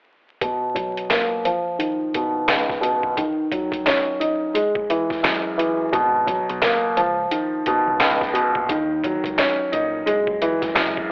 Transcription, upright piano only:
0.41 B2
0.74 F#3
1.10 A#3
1.45 F3
1.79 D#3
2.15 B2
2.48 C#2
2.81 B2
3.18 D#3
3.52 F#3
3.87 C#4
4.20 D#4
4.54 G#3
4.90 E3
5.23 F#2
5.58 E3
5.93 B2
6.26 F#3
6.62 A#3
6.97 F3
7.31 D#3
7.68 B2
8.01 C#2
8.33 B2
8.70 D#3
9.04 F#3
9.39 C#4
9.72 D#4
10.06 G#3
10.42 E3
10.75 F#2

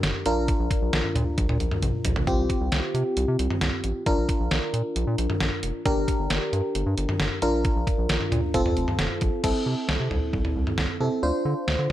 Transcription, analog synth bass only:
0.03 G1
0.26 A#1
0.59 A#1
0.82 A#1
0.93 A#1
1.15 A#2
1.38 A#1
1.49 A#2
1.60 A#1
1.83 A#1
2.05 A#1
2.27 C2
2.38 C2
2.61 C2
2.72 C2
2.94 C3
3.17 C2
3.28 C3
3.39 C2
3.62 C2
3.84 A1
4.06 A#1
4.18 A#1
4.40 A#1
4.51 A#1
4.74 A#2
4.96 A#1
5.07 A#2
5.18 A#1
5.41 A#1
5.63 F1
5.86 G1
5.97 G1
6.19 G1
6.30 G1
6.53 G2
6.75 G1
6.86 G2
6.97 G1
7.20 G1
7.42 A#1
7.76 A#1
7.98 A#1
8.09 A#1
8.32 A#2
8.54 F1
8.65 F2
8.77 F1
8.99 F1
9.22 A#1
9.44 C2
9.66 C3
9.89 C2
10.00 C3
10.11 C2
10.33 C2
10.56 C2
10.78 C2
11.00 C3
11.23 D2
11.45 D3
11.68 D2
11.79 D3

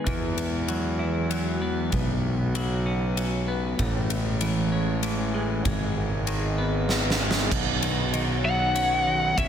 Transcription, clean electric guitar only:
Already playing: B3
0.06 E3
0.68 F#3
0.99 E4
1.30 F#3
1.62 B3
1.93 B2
2.55 F#3
2.86 C#4
3.17 F#3
3.48 B3
3.79 A2
4.41 E3
4.72 C#4
5.03 E3
5.34 G#3
5.65 G#2
6.27 D#3
6.58 B3
6.89 D#3
7.20 G#3
7.51 B2
7.82 D#3
8.13 D#3
8.44 F#3
8.75 C#4
9.07 D#3
9.37 C#3

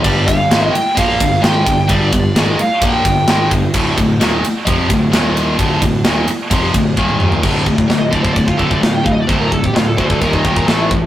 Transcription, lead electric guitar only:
0.03 D5
0.26 F5
0.73 G5
0.98 F5
1.43 G5
1.91 D5
2.61 F5
2.83 G5
7.99 D#5
8.12 D5
8.22 C5
8.33 D5
8.45 F4
8.57 A4
8.71 D5
8.84 F5
8.93 G5
9.05 F5
9.12 D#5
9.21 D5
9.27 C5
9.41 A#4
9.53 A4
9.66 G4
9.75 F4
9.86 A4
9.98 C5
10.09 A4
10.21 A#4
10.34 D#4
10.44 G4
10.56 A#4
10.67 A4
10.77 E4

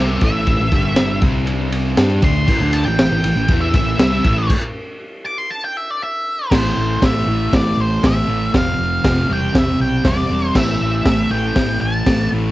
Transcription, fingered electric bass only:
Already playing: C2
0.21 A1
0.60 A1
0.71 G1
1.22 C2
1.98 G2
2.23 D2
2.48 A1
2.60 D2
2.85 A1
3.11 A1
3.23 A1
3.35 A1
3.49 E2
3.74 A1
3.98 C2
4.24 A1
6.52 A1
6.77 A1
7.02 A1
7.26 A1
7.53 A1
7.77 A1
8.04 A1
8.28 A1
8.54 F1
8.79 F1
9.04 F1
9.29 E1
9.54 E1
9.80 B1
10.05 E1
10.30 E1
10.55 A1
10.81 A1
11.06 A1
11.30 A1
11.56 A1
11.82 A1
12.06 A1
12.32 A1

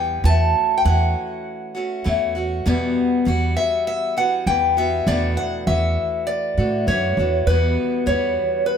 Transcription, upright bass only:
Already playing: E2
0.24 E2
0.85 E2
2.06 E2
2.66 E2
3.27 E2
4.46 E2
5.07 E2
5.67 E2
6.58 A2
6.87 F#2
7.17 E2
7.47 E2
8.07 E2

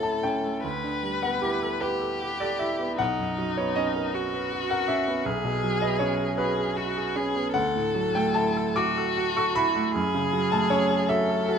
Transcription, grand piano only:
Already playing: D2 A2 A3 C#4 E4 A4 C#5 E5 F#5 A5
0.03 E4 A5
0.23 C#4 G5
0.43 A3
0.64 D2
0.84 D3
1.03 G3
1.23 B3 F#5
1.42 E4 G4
1.63 A4
1.81 G4 B4
2.01 A4
2.22 G4
2.40 A4 D5
2.59 E4 E5
2.79 B3
2.98 B1 F#5
3.19 F#2
3.38 F#3
3.57 B3 C#5
3.75 C#4 D#5
3.96 A#4
4.15 F#4
4.34 B4
4.53 F#4
4.71 A#4 F#5
4.88 C#4 E5
5.08 B3
5.26 B1
5.44 B2
5.64 F#3
5.81 B3 D#5
5.99 C#4 C#5
6.19 G#4
6.38 F#4 B4
6.58 G#4
6.77 F#4
6.97 G#4
7.16 C#4
7.36 B3
7.54 D2 F#5
7.75 A2
7.95 F#3
8.15 A3 G5
8.34 E4 A5
8.57 A4
8.76 F#4 D6
8.98 A4
9.17 F#4
9.37 A4 C#6
9.55 E4 B5
9.76 A3
9.95 F#2
10.15 C#3
10.33 F#3
10.52 A3 A5
10.70 C#4 C#5
10.91 G#4
11.09 F#4 E5
11.29 A4
11.49 F#4

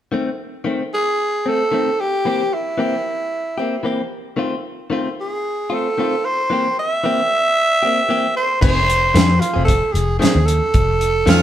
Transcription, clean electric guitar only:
0.12 D#3 A3 C4
0.64 D#3 A3 C4
1.46 A3 C4
1.72 D#3 A3 C4
2.25 E3 A#3 C4 G4
2.78 E3 A#3 C4 G4
3.58 A#3 C4 G4
3.83 E3 A#3 C4 G4
4.37 D#3 A3 C4 F4
4.90 D#3 A3 C4 F4
5.70 A3 C4 F4
5.98 D#3 A3 C4 F4
6.50 E3 A#3 C4 G4
7.04 E3 A#3 C4 G4
7.83 A#3 C4 G4
8.09 E3 A#3 C4 G4
8.61 D#3 A3 C4 G#4
9.14 D#3 A3 C4 G#4
9.54 A3 C4 G#4
10.19 D#3 A3 C4 G#4
11.26 D#3 A3 C4 G#4

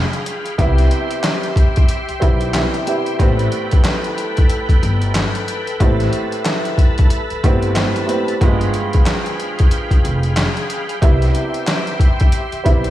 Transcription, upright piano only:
Already playing: G2 F3 G#3 B3
0.58 C3 G3 B3 E4
2.20 G3 B3 C4 E4
2.53 C3 G3 B3 E4
2.87 C3 G3 B3 E4
3.19 A2 G3 B3 C4
5.80 A2 G3 B3 C4
7.44 A2 G3 B3 C4
7.74 A2 G3 B3 C4
8.06 A2 G3 B3 C4
8.41 G2 F3 G#3 B3
11.02 C3 G3 B3 E4
12.64 G3 B3 C4 E4

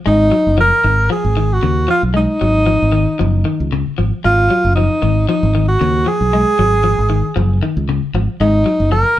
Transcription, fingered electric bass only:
0.07 G#1
0.47 F#1
0.84 G#1
1.24 G#1
1.63 D#2
2.03 B1
2.41 G#1
2.82 G#1
3.21 F#1
3.60 C#2
3.87 muted fingered electric bass stroke
3.99 G#1
4.25 G#1
4.65 F#1
5.03 G#1
5.43 G#1
5.81 D#2
6.21 B1
6.59 G#1
6.98 G#1
7.37 F#1
7.77 C#2
8.02 muted fingered electric bass stroke
8.14 G#1
8.40 G#1
8.80 F#1

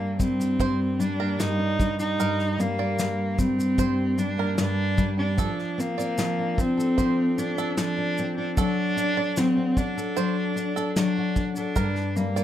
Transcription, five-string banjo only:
Already playing: D5
0.60 C5
1.20 A#4
2.20 A#4
2.79 D5
3.79 C5
4.39 A#4
5.39 A4
5.98 D5
6.98 C5
7.58 A4
8.58 A4
9.17 D5
10.17 C5
10.76 A4
11.76 A#4
12.36 D5

